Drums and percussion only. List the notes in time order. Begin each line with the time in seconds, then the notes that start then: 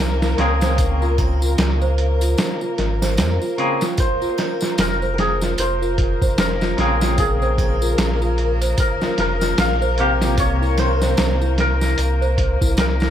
0.22 snare, tambourine
0.38 snare, closed hi-hat
0.61 snare, tambourine
0.78 kick, closed hi-hat, tambourine
1.02 tambourine
1.18 kick, closed hi-hat, triangle
1.42 tambourine
1.58 snare, closed hi-hat, tambourine
1.82 tambourine
1.98 closed hi-hat
2.21 closed hi-hat, tambourine
2.38 snare, closed hi-hat, tambourine
2.61 tambourine
2.78 snare, closed hi-hat
3.02 snare, tambourine, triangle
3.17 snare, closed hi-hat, tambourine
3.42 tambourine
3.58 closed hi-hat
3.81 snare, tambourine
3.97 kick, closed hi-hat, tambourine
4.22 tambourine
4.38 snare, closed hi-hat, triangle
4.61 snare, tambourine
4.78 snare, closed hi-hat, tambourine
5.02 tambourine
5.18 snare, closed hi-hat
5.41 snare, tambourine
5.58 closed hi-hat, tambourine
5.82 tambourine
5.98 kick, closed hi-hat
6.22 kick, tambourine
6.38 snare, closed hi-hat, tambourine
6.61 snare, tambourine
6.78 snare, closed hi-hat
7.01 snare, tambourine
7.18 kick, closed hi-hat, tambourine
7.42 tambourine
7.58 kick, closed hi-hat, triangle
7.82 tambourine
7.98 snare, closed hi-hat, tambourine
8.22 tambourine
8.38 closed hi-hat
8.62 closed hi-hat, tambourine
8.78 kick, closed hi-hat, tambourine
9.01 snare, tambourine
9.18 snare, closed hi-hat
9.41 snare, tambourine, triangle
9.58 snare, closed hi-hat, tambourine
9.82 tambourine
9.98 closed hi-hat
10.22 snare, tambourine
10.38 kick, closed hi-hat, tambourine
10.62 tambourine
10.78 snare, closed hi-hat, triangle
11.01 snare, tambourine
11.17 snare, closed hi-hat, tambourine
11.42 tambourine
11.58 snare, closed hi-hat
11.81 snare, tambourine
11.98 closed hi-hat, tambourine
12.22 tambourine
12.38 kick, closed hi-hat
12.61 kick, tambourine
12.77 snare, closed hi-hat, tambourine
13.00 snare, tambourine